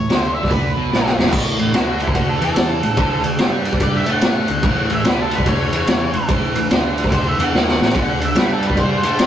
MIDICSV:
0, 0, Header, 1, 5, 480
1, 0, Start_track
1, 0, Tempo, 413223
1, 1548, Time_signature, 4, 2, 24, 8
1, 10762, End_track
2, 0, Start_track
2, 0, Title_t, "Lead electric guitar"
2, 0, Program_c, 0, 29
2, 0, Note_on_c, 0, 73, 96
2, 193, Note_off_c, 0, 73, 0
2, 193, Note_on_c, 0, 72, 96
2, 399, Note_off_c, 0, 72, 0
2, 404, Note_on_c, 0, 76, 97
2, 578, Note_on_c, 0, 71, 75
2, 588, Note_off_c, 0, 76, 0
2, 1325, Note_off_c, 0, 71, 0
2, 2044, Note_on_c, 0, 66, 91
2, 2347, Note_off_c, 0, 66, 0
2, 2356, Note_on_c, 0, 64, 84
2, 2501, Note_off_c, 0, 64, 0
2, 2505, Note_on_c, 0, 66, 85
2, 2662, Note_off_c, 0, 66, 0
2, 2664, Note_on_c, 0, 69, 80
2, 2821, Note_off_c, 0, 69, 0
2, 2838, Note_on_c, 0, 69, 92
2, 3764, Note_off_c, 0, 69, 0
2, 4448, Note_on_c, 0, 74, 96
2, 4608, Note_off_c, 0, 74, 0
2, 4608, Note_on_c, 0, 76, 85
2, 4754, Note_off_c, 0, 76, 0
2, 4771, Note_on_c, 0, 78, 106
2, 5691, Note_off_c, 0, 78, 0
2, 5739, Note_on_c, 0, 76, 80
2, 5879, Note_off_c, 0, 76, 0
2, 5902, Note_on_c, 0, 71, 87
2, 6061, Note_off_c, 0, 71, 0
2, 6061, Note_on_c, 0, 69, 80
2, 6217, Note_off_c, 0, 69, 0
2, 6217, Note_on_c, 0, 71, 91
2, 6358, Note_off_c, 0, 71, 0
2, 6363, Note_on_c, 0, 73, 99
2, 7287, Note_off_c, 0, 73, 0
2, 8295, Note_on_c, 0, 72, 91
2, 8437, Note_off_c, 0, 72, 0
2, 8462, Note_on_c, 0, 76, 78
2, 8632, Note_off_c, 0, 76, 0
2, 8632, Note_on_c, 0, 78, 87
2, 9542, Note_off_c, 0, 78, 0
2, 9584, Note_on_c, 0, 76, 83
2, 9722, Note_off_c, 0, 76, 0
2, 9744, Note_on_c, 0, 71, 87
2, 9908, Note_off_c, 0, 71, 0
2, 9908, Note_on_c, 0, 69, 74
2, 10044, Note_off_c, 0, 69, 0
2, 10074, Note_on_c, 0, 71, 79
2, 10208, Note_off_c, 0, 71, 0
2, 10218, Note_on_c, 0, 72, 98
2, 10762, Note_off_c, 0, 72, 0
2, 10762, End_track
3, 0, Start_track
3, 0, Title_t, "Distorted electric guitar"
3, 0, Program_c, 1, 30
3, 107, Note_on_c, 1, 50, 91
3, 884, Note_off_c, 1, 50, 0
3, 888, Note_on_c, 1, 47, 86
3, 1052, Note_off_c, 1, 47, 0
3, 1057, Note_on_c, 1, 46, 100
3, 1361, Note_off_c, 1, 46, 0
3, 1367, Note_on_c, 1, 40, 93
3, 1539, Note_off_c, 1, 40, 0
3, 1539, Note_on_c, 1, 45, 101
3, 1827, Note_off_c, 1, 45, 0
3, 1841, Note_on_c, 1, 45, 65
3, 1986, Note_off_c, 1, 45, 0
3, 2015, Note_on_c, 1, 50, 88
3, 2791, Note_off_c, 1, 50, 0
3, 2795, Note_on_c, 1, 52, 96
3, 3277, Note_off_c, 1, 52, 0
3, 3286, Note_on_c, 1, 45, 73
3, 3429, Note_off_c, 1, 45, 0
3, 3451, Note_on_c, 1, 50, 104
3, 3745, Note_off_c, 1, 50, 0
3, 3759, Note_on_c, 1, 50, 67
3, 3905, Note_off_c, 1, 50, 0
3, 3935, Note_on_c, 1, 55, 96
3, 4720, Note_off_c, 1, 55, 0
3, 4728, Note_on_c, 1, 57, 91
3, 5203, Note_off_c, 1, 57, 0
3, 5215, Note_on_c, 1, 50, 70
3, 5353, Note_off_c, 1, 50, 0
3, 5387, Note_on_c, 1, 45, 106
3, 5686, Note_off_c, 1, 45, 0
3, 5700, Note_on_c, 1, 45, 69
3, 5858, Note_off_c, 1, 45, 0
3, 5858, Note_on_c, 1, 50, 98
3, 6642, Note_off_c, 1, 50, 0
3, 6651, Note_on_c, 1, 52, 99
3, 7125, Note_off_c, 1, 52, 0
3, 7134, Note_on_c, 1, 45, 70
3, 7273, Note_off_c, 1, 45, 0
3, 7306, Note_on_c, 1, 45, 106
3, 7606, Note_off_c, 1, 45, 0
3, 7618, Note_on_c, 1, 45, 73
3, 7755, Note_off_c, 1, 45, 0
3, 7786, Note_on_c, 1, 50, 94
3, 8566, Note_off_c, 1, 50, 0
3, 8582, Note_on_c, 1, 52, 94
3, 8746, Note_off_c, 1, 52, 0
3, 8753, Note_on_c, 1, 51, 93
3, 9045, Note_off_c, 1, 51, 0
3, 9049, Note_on_c, 1, 45, 102
3, 9220, Note_off_c, 1, 45, 0
3, 9229, Note_on_c, 1, 50, 99
3, 9521, Note_off_c, 1, 50, 0
3, 9535, Note_on_c, 1, 50, 68
3, 9674, Note_off_c, 1, 50, 0
3, 9708, Note_on_c, 1, 55, 91
3, 10488, Note_off_c, 1, 55, 0
3, 10494, Note_on_c, 1, 57, 94
3, 10762, Note_off_c, 1, 57, 0
3, 10762, End_track
4, 0, Start_track
4, 0, Title_t, "Picked electric bass"
4, 0, Program_c, 2, 34
4, 123, Note_on_c, 2, 38, 95
4, 857, Note_off_c, 2, 38, 0
4, 908, Note_on_c, 2, 35, 91
4, 1063, Note_off_c, 2, 35, 0
4, 1079, Note_on_c, 2, 34, 85
4, 1361, Note_off_c, 2, 34, 0
4, 1377, Note_on_c, 2, 28, 83
4, 1534, Note_off_c, 2, 28, 0
4, 1541, Note_on_c, 2, 33, 92
4, 1831, Note_off_c, 2, 33, 0
4, 1857, Note_on_c, 2, 33, 70
4, 2017, Note_off_c, 2, 33, 0
4, 2025, Note_on_c, 2, 38, 87
4, 2768, Note_off_c, 2, 38, 0
4, 2807, Note_on_c, 2, 40, 90
4, 3258, Note_off_c, 2, 40, 0
4, 3288, Note_on_c, 2, 33, 77
4, 3448, Note_off_c, 2, 33, 0
4, 3455, Note_on_c, 2, 38, 100
4, 3748, Note_off_c, 2, 38, 0
4, 3763, Note_on_c, 2, 38, 78
4, 3929, Note_off_c, 2, 38, 0
4, 3937, Note_on_c, 2, 43, 94
4, 4684, Note_off_c, 2, 43, 0
4, 4733, Note_on_c, 2, 45, 96
4, 5181, Note_off_c, 2, 45, 0
4, 5215, Note_on_c, 2, 38, 76
4, 5376, Note_off_c, 2, 38, 0
4, 5381, Note_on_c, 2, 33, 100
4, 5671, Note_off_c, 2, 33, 0
4, 5691, Note_on_c, 2, 33, 79
4, 5854, Note_off_c, 2, 33, 0
4, 5858, Note_on_c, 2, 38, 90
4, 6605, Note_off_c, 2, 38, 0
4, 6653, Note_on_c, 2, 40, 100
4, 7101, Note_off_c, 2, 40, 0
4, 7136, Note_on_c, 2, 33, 72
4, 7296, Note_off_c, 2, 33, 0
4, 7302, Note_on_c, 2, 33, 88
4, 7591, Note_off_c, 2, 33, 0
4, 7622, Note_on_c, 2, 33, 72
4, 7779, Note_off_c, 2, 33, 0
4, 7788, Note_on_c, 2, 38, 96
4, 8530, Note_off_c, 2, 38, 0
4, 8575, Note_on_c, 2, 40, 92
4, 8736, Note_off_c, 2, 40, 0
4, 8748, Note_on_c, 2, 39, 88
4, 9035, Note_off_c, 2, 39, 0
4, 9055, Note_on_c, 2, 33, 81
4, 9216, Note_off_c, 2, 33, 0
4, 9235, Note_on_c, 2, 38, 96
4, 9519, Note_off_c, 2, 38, 0
4, 9534, Note_on_c, 2, 38, 74
4, 9693, Note_off_c, 2, 38, 0
4, 9700, Note_on_c, 2, 43, 84
4, 10446, Note_off_c, 2, 43, 0
4, 10497, Note_on_c, 2, 45, 88
4, 10762, Note_off_c, 2, 45, 0
4, 10762, End_track
5, 0, Start_track
5, 0, Title_t, "Drums"
5, 112, Note_on_c, 9, 46, 55
5, 121, Note_on_c, 9, 38, 99
5, 228, Note_off_c, 9, 46, 0
5, 237, Note_off_c, 9, 38, 0
5, 503, Note_on_c, 9, 36, 83
5, 510, Note_on_c, 9, 38, 31
5, 585, Note_on_c, 9, 46, 53
5, 590, Note_off_c, 9, 36, 0
5, 590, Note_on_c, 9, 36, 85
5, 626, Note_off_c, 9, 38, 0
5, 701, Note_off_c, 9, 46, 0
5, 706, Note_off_c, 9, 36, 0
5, 1079, Note_on_c, 9, 38, 63
5, 1195, Note_off_c, 9, 38, 0
5, 1231, Note_on_c, 9, 38, 57
5, 1348, Note_off_c, 9, 38, 0
5, 1382, Note_on_c, 9, 38, 76
5, 1466, Note_off_c, 9, 38, 0
5, 1466, Note_on_c, 9, 38, 79
5, 1538, Note_on_c, 9, 49, 108
5, 1542, Note_on_c, 9, 36, 106
5, 1582, Note_off_c, 9, 38, 0
5, 1654, Note_off_c, 9, 49, 0
5, 1658, Note_off_c, 9, 36, 0
5, 1848, Note_on_c, 9, 51, 63
5, 1964, Note_off_c, 9, 51, 0
5, 2017, Note_on_c, 9, 51, 82
5, 2026, Note_on_c, 9, 38, 102
5, 2133, Note_off_c, 9, 51, 0
5, 2142, Note_off_c, 9, 38, 0
5, 2322, Note_on_c, 9, 51, 60
5, 2411, Note_on_c, 9, 36, 88
5, 2438, Note_off_c, 9, 51, 0
5, 2495, Note_on_c, 9, 51, 85
5, 2497, Note_off_c, 9, 36, 0
5, 2497, Note_on_c, 9, 36, 92
5, 2611, Note_off_c, 9, 51, 0
5, 2613, Note_off_c, 9, 36, 0
5, 2805, Note_on_c, 9, 51, 64
5, 2921, Note_off_c, 9, 51, 0
5, 2973, Note_on_c, 9, 51, 91
5, 2982, Note_on_c, 9, 38, 118
5, 3089, Note_off_c, 9, 51, 0
5, 3098, Note_off_c, 9, 38, 0
5, 3287, Note_on_c, 9, 51, 66
5, 3403, Note_off_c, 9, 51, 0
5, 3448, Note_on_c, 9, 51, 97
5, 3455, Note_on_c, 9, 36, 114
5, 3564, Note_off_c, 9, 51, 0
5, 3571, Note_off_c, 9, 36, 0
5, 3759, Note_on_c, 9, 51, 70
5, 3875, Note_off_c, 9, 51, 0
5, 3932, Note_on_c, 9, 51, 89
5, 3941, Note_on_c, 9, 38, 105
5, 4048, Note_off_c, 9, 51, 0
5, 4057, Note_off_c, 9, 38, 0
5, 4242, Note_on_c, 9, 51, 69
5, 4331, Note_on_c, 9, 36, 87
5, 4358, Note_off_c, 9, 51, 0
5, 4413, Note_on_c, 9, 51, 93
5, 4417, Note_off_c, 9, 36, 0
5, 4417, Note_on_c, 9, 36, 91
5, 4529, Note_off_c, 9, 51, 0
5, 4533, Note_off_c, 9, 36, 0
5, 4717, Note_on_c, 9, 51, 71
5, 4834, Note_off_c, 9, 51, 0
5, 4894, Note_on_c, 9, 51, 98
5, 4903, Note_on_c, 9, 38, 115
5, 5010, Note_off_c, 9, 51, 0
5, 5020, Note_off_c, 9, 38, 0
5, 5202, Note_on_c, 9, 51, 74
5, 5319, Note_off_c, 9, 51, 0
5, 5374, Note_on_c, 9, 51, 97
5, 5380, Note_on_c, 9, 36, 112
5, 5490, Note_off_c, 9, 51, 0
5, 5496, Note_off_c, 9, 36, 0
5, 5688, Note_on_c, 9, 51, 74
5, 5804, Note_off_c, 9, 51, 0
5, 5860, Note_on_c, 9, 51, 92
5, 5869, Note_on_c, 9, 38, 104
5, 5976, Note_off_c, 9, 51, 0
5, 5985, Note_off_c, 9, 38, 0
5, 6170, Note_on_c, 9, 51, 68
5, 6255, Note_on_c, 9, 36, 84
5, 6286, Note_off_c, 9, 51, 0
5, 6340, Note_on_c, 9, 51, 88
5, 6342, Note_off_c, 9, 36, 0
5, 6342, Note_on_c, 9, 36, 89
5, 6457, Note_off_c, 9, 51, 0
5, 6458, Note_off_c, 9, 36, 0
5, 6651, Note_on_c, 9, 51, 66
5, 6767, Note_off_c, 9, 51, 0
5, 6822, Note_on_c, 9, 51, 90
5, 6831, Note_on_c, 9, 38, 115
5, 6938, Note_off_c, 9, 51, 0
5, 6947, Note_off_c, 9, 38, 0
5, 7126, Note_on_c, 9, 51, 60
5, 7242, Note_off_c, 9, 51, 0
5, 7299, Note_on_c, 9, 51, 95
5, 7303, Note_on_c, 9, 36, 107
5, 7416, Note_off_c, 9, 51, 0
5, 7419, Note_off_c, 9, 36, 0
5, 7612, Note_on_c, 9, 51, 69
5, 7728, Note_off_c, 9, 51, 0
5, 7789, Note_on_c, 9, 51, 89
5, 7799, Note_on_c, 9, 38, 107
5, 7906, Note_off_c, 9, 51, 0
5, 7915, Note_off_c, 9, 38, 0
5, 8104, Note_on_c, 9, 51, 63
5, 8181, Note_on_c, 9, 36, 87
5, 8194, Note_on_c, 9, 38, 31
5, 8220, Note_off_c, 9, 51, 0
5, 8269, Note_off_c, 9, 36, 0
5, 8269, Note_on_c, 9, 36, 85
5, 8269, Note_on_c, 9, 51, 93
5, 8310, Note_off_c, 9, 38, 0
5, 8385, Note_off_c, 9, 36, 0
5, 8385, Note_off_c, 9, 51, 0
5, 8590, Note_on_c, 9, 51, 76
5, 8707, Note_off_c, 9, 51, 0
5, 8769, Note_on_c, 9, 38, 61
5, 8885, Note_off_c, 9, 38, 0
5, 8921, Note_on_c, 9, 38, 64
5, 9037, Note_off_c, 9, 38, 0
5, 9081, Note_on_c, 9, 38, 90
5, 9165, Note_off_c, 9, 38, 0
5, 9165, Note_on_c, 9, 38, 86
5, 9233, Note_on_c, 9, 36, 120
5, 9237, Note_on_c, 9, 51, 98
5, 9281, Note_off_c, 9, 38, 0
5, 9349, Note_off_c, 9, 36, 0
5, 9353, Note_off_c, 9, 51, 0
5, 9542, Note_on_c, 9, 51, 73
5, 9658, Note_off_c, 9, 51, 0
5, 9705, Note_on_c, 9, 51, 95
5, 9714, Note_on_c, 9, 38, 106
5, 9821, Note_off_c, 9, 51, 0
5, 9830, Note_off_c, 9, 38, 0
5, 10019, Note_on_c, 9, 51, 64
5, 10103, Note_on_c, 9, 36, 90
5, 10135, Note_off_c, 9, 51, 0
5, 10185, Note_on_c, 9, 51, 91
5, 10188, Note_off_c, 9, 36, 0
5, 10188, Note_on_c, 9, 36, 93
5, 10302, Note_off_c, 9, 51, 0
5, 10304, Note_off_c, 9, 36, 0
5, 10491, Note_on_c, 9, 51, 69
5, 10607, Note_off_c, 9, 51, 0
5, 10671, Note_on_c, 9, 51, 101
5, 10680, Note_on_c, 9, 38, 111
5, 10762, Note_off_c, 9, 38, 0
5, 10762, Note_off_c, 9, 51, 0
5, 10762, End_track
0, 0, End_of_file